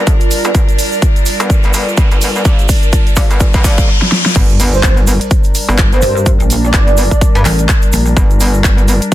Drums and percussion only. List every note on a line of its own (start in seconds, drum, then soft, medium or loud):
0.07 kick loud
0.07 closed hi-hat medium
0.07 shaker medium
0.21 closed hi-hat medium
0.21 shaker soft
0.31 open hi-hat medium
0.31 shaker loud
0.44 closed hi-hat soft
0.44 shaker soft
0.55 kick loud
0.55 closed hi-hat medium
0.55 shaker soft
0.69 closed hi-hat soft
0.69 shaker soft
0.79 open hi-hat loud
0.79 shaker medium
0.92 shaker soft
1.02 kick loud
1.02 closed hi-hat medium
1.02 shaker medium
1.16 closed hi-hat soft
1.16 shaker soft
1.26 open hi-hat loud
1.26 shaker medium
1.40 closed hi-hat medium
1.40 shaker soft
1.50 kick loud
1.50 closed hi-hat medium
1.50 shaker medium
1.63 closed hi-hat soft
1.63 shaker soft
1.74 open hi-hat loud
1.74 shaker loud
1.89 shaker soft
1.97 kick loud
1.97 closed hi-hat medium
1.97 shaker medium
2.11 closed hi-hat medium
2.11 shaker soft
2.21 open hi-hat loud
2.21 shaker medium
2.36 shaker soft
2.45 kick loud
2.45 closed hi-hat medium
2.45 shaker medium
2.59 closed hi-hat soft
2.59 shaker soft
2.69 kick loud
2.69 open hi-hat loud
2.69 shaker loud
2.83 closed hi-hat soft
2.83 shaker soft
2.92 kick loud
2.92 closed hi-hat medium
2.92 shaker soft
3.07 closed hi-hat soft
3.07 shaker soft
3.16 kick loud
3.16 open hi-hat loud
3.16 shaker loud
3.31 closed hi-hat soft
3.31 shaker soft
3.40 kick loud
3.40 closed hi-hat medium
3.40 shaker medium
3.53 kick medium
3.53 closed hi-hat soft
3.53 shaker soft
3.64 kick loud
3.64 open hi-hat loud
3.64 shaker medium
3.78 kick medium
3.78 closed hi-hat soft
3.78 shaker soft
4.02 snare medium
4.12 snare medium
4.26 snare medium
4.36 kick loud
4.36 closed hi-hat medium
4.36 crash loud
4.36 shaker medium
4.50 closed hi-hat soft
4.50 shaker soft
4.60 open hi-hat loud
4.60 shaker medium
4.74 shaker soft
4.83 kick loud
4.83 clap loud
4.83 closed hi-hat medium
4.83 shaker soft
4.97 closed hi-hat soft
4.97 shaker soft
5.07 open hi-hat medium
5.07 shaker loud
5.21 closed hi-hat medium
5.21 shaker soft
5.31 kick loud
5.31 closed hi-hat medium
5.31 shaker medium
5.44 closed hi-hat soft
5.44 shaker soft
5.55 open hi-hat loud
5.55 shaker medium
5.69 shaker soft
5.78 kick loud
5.78 clap loud
5.78 closed hi-hat medium
5.78 shaker medium
5.92 closed hi-hat medium
5.92 shaker soft
6.02 open hi-hat medium
6.02 shaker medium
6.17 shaker soft
6.26 kick loud
6.26 closed hi-hat medium
6.26 shaker medium
6.40 closed hi-hat soft
6.40 shaker soft
6.50 open hi-hat loud
6.50 shaker loud
6.64 shaker soft
6.74 kick loud
6.74 clap loud
6.74 closed hi-hat medium
6.74 shaker medium
6.88 closed hi-hat soft
6.88 shaker soft
6.97 open hi-hat loud
6.97 shaker medium
7.11 kick medium
7.11 closed hi-hat medium
7.11 shaker soft
7.21 kick loud
7.21 closed hi-hat medium
7.21 shaker medium
7.35 closed hi-hat soft
7.35 shaker soft
7.45 clap medium
7.45 open hi-hat loud
7.45 shaker medium
7.59 closed hi-hat soft
7.59 shaker soft
7.69 kick loud
7.69 clap loud
7.69 closed hi-hat medium
7.69 shaker medium
7.82 closed hi-hat medium
7.82 shaker soft
7.93 open hi-hat loud
7.93 shaker medium
8.06 shaker soft
8.17 kick loud
8.17 closed hi-hat medium
8.17 shaker medium
8.30 closed hi-hat soft
8.30 shaker soft
8.40 open hi-hat loud
8.40 shaker loud
8.54 shaker soft
8.64 kick loud
8.64 clap loud
8.64 closed hi-hat medium
8.64 shaker medium
8.78 closed hi-hat soft
8.78 shaker soft
8.88 open hi-hat loud
8.88 shaker medium
9.02 closed hi-hat medium
9.02 shaker soft